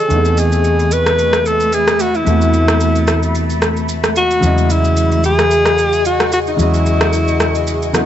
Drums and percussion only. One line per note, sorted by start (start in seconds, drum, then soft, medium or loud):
0.10 shaker medium
0.25 shaker soft
0.37 shaker medium
0.52 shaker soft
0.64 shaker medium
0.79 shaker soft
0.91 shaker loud
1.06 cross-stick medium
1.06 shaker soft
1.19 shaker medium
1.33 cross-stick medium
1.33 shaker medium
1.46 shaker medium
1.60 shaker soft
1.73 shaker medium
1.88 cross-stick medium
1.88 shaker medium
2.00 shaker loud
2.14 shaker soft
2.27 shaker medium
2.42 shaker soft
2.54 shaker medium
2.68 cross-stick loud
2.68 shaker soft
2.80 shaker medium
2.95 shaker soft
3.08 cross-stick medium
3.08 shaker loud
3.23 shaker soft
3.35 shaker medium
3.50 shaker medium
3.62 cross-stick medium
3.62 shaker medium
3.77 shaker soft
3.89 shaker medium
4.04 cross-stick medium
4.04 shaker medium
4.16 shaker loud
4.31 shaker soft
4.43 shaker medium
4.58 shaker soft
4.70 shaker medium
4.85 shaker soft
4.97 shaker medium
5.12 shaker soft
5.24 shaker medium
5.39 cross-stick medium
5.39 shaker soft
5.51 shaker medium
5.66 cross-stick medium
5.66 shaker soft
5.78 shaker medium
5.93 shaker soft
6.05 shaker medium
6.20 cross-stick medium
6.20 shaker medium
6.32 shaker medium
6.47 shaker soft
6.59 shaker medium
6.74 shaker soft
6.86 shaker medium
7.01 cross-stick loud
7.01 shaker soft
7.13 shaker medium
7.28 shaker soft
7.40 cross-stick medium
7.40 shaker medium
7.55 shaker soft
7.67 shaker medium
7.82 shaker soft
7.94 cross-stick medium
7.94 shaker medium